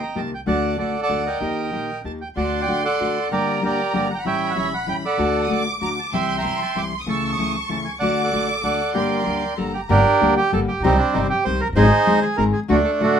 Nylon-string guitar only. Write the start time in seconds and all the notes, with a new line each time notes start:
0.15 C3 D#3 A#3 C4 G4
0.46 D3 A3 D4 F#4
0.78 D3 A3 D4 F#4
1.09 D3 A3 D4 F#4
1.40 D#3 A#3 D#4 G4
1.72 D#3 A#3 D#4 G4
2.04 D#3 A#3 D#4 G4
2.36 D3 A3 D4 F#4
2.68 D3 A3 D4 F#4
3.00 D3 A3 D4 F#4
3.31 D3 G3 A#3 D4 G4
3.62 D3 G3 A#3 D4 G4
3.93 D3 G3 A#3 D4 G4
4.25 E3 G3 C#4 E4
4.55 E3 G3 C#4 E4
4.86 E3 G3 C#4 E4
5.17 D3 A3 D4 F#4
5.49 D3 A3 D4 F#4
5.81 D3 A3 D4 F#4
6.13 C3 E3 G3 C4 E4
6.44 C3 E3 G3 C4 E4
6.75 C3 E3 G3 C4 E4
7.06 C#3 E3 A3 C#4 E4
7.38 C#3 E3 A3 C#4 E4
7.69 C#3 E3 A3 C#4 E4
8.01 D3 A3 D4 F#4
8.32 D3 A3 D4 F#4
8.63 D3 A3 D4 F#4
8.94 D3 G3 A#3 D4 G4
9.25 D3 G3 A#3 D4 G4
9.57 D3 G3 A#3 D4 G4
9.89 D3 G3 A#3 D4 G4
10.21 D3 G3 A#3 D4 G4
10.52 D3 G3 A#3 D4 G4
10.84 C3 D#3 G3 C4 G4
11.14 C3 D#3 G3 C4 G4
11.45 C3 D#3 G3 C4 G4
11.76 D#3 G#3 C4 D#4 G#4
12.06 D#3 G#3 C4 D#4 G#4
12.37 D#3 G#3 C4 D#4 G#4
12.68 D3 A3 D4 F#4
13.00 D3 A3 D4 F#4